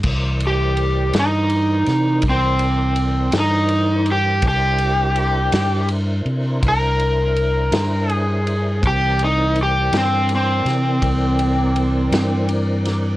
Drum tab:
CC |x-----------|------------|------------|
RD |-xxxxxxxxxxx|xxxxxxxxxxxx|xxxxxxxxxxxx|
SD |---o-o---o--|---o-----o--|---o-o---o-o|
BD |o-----o-----|o-----o-----|o-----o-----|